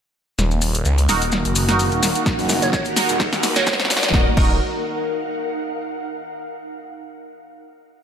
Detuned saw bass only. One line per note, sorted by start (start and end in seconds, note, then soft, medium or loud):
0.39 0.84 D#1 medium
0.86 1.07 C#2 medium
1.09 1.43 D#1 medium
1.45 1.90 F#1 loud
1.92 2.13 D#1 loud
2.39 2.60 F#1 loud
2.62 2.84 F#1 loud
3.09 3.31 D#1 loud
3.33 3.77 D#2 loud
3.80 4.01 D#1 loud
4.03 4.12 D#1 loud
4.14 4.28 D#1 medium
4.37 4.59 D#1 loud